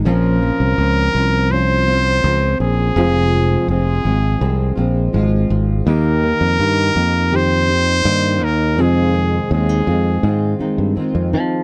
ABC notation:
X:1
M:4/4
L:1/16
Q:1/4=82
K:Bbdor
V:1 name="Trumpet"
B8 c6 A2- | A4 A6 z6 | B8 c6 B2 | A4 A6 z6 |]
V:2 name="Nylon-string guitar"
[F,D]2 F,2 C2 F,2 D2 C2 F,2 C2 | [F,A]2 A,2 C2 A,2 A2 C2 A,2 C2 | [B,G]2 B,2 E2 B,2 G2 E2 B,2 E2 | [CA]2 C2 D E C2 A2 E2 C2 E2 |]
V:3 name="Steel-string acoustic guitar"
[B,,F,CDF]4 [F,CDF]2 [CDF]2 [F,CDF]2 [CDF]2 [F,CDF]4 | [F,,C,F,A,CF]4 [F,A,CF]2 [F,A,CF]2 [F,A,CF]2 [F,A,CF]2 [F,A,CF]4 | [E,B,EG]4 [E,B,EG]2 [B,EG]2 [E,B,EG]2 [B,EG]2 [E,B,EG]4 | [F,,C,E,A,CF]4 [E,A,CF]2 [E,A,CF]2 [E,A,CF]2 [E,A,CF]2 [E,A,CF]4 |]
V:4 name="Fingered electric bass" clef=bass
B,,,3 C,, D,,2 C,,6 D,,2 B,,,2 | F,,,4 F,,,2 A,,,2 C,,2 B,,,2 A,,,2 A,,,2 | E,,3 F,, G,,2 F,,6 G,,2 E,,2 | F,,4 E,,2 F,,2 A,,2 z G,, z F,, F,2 |]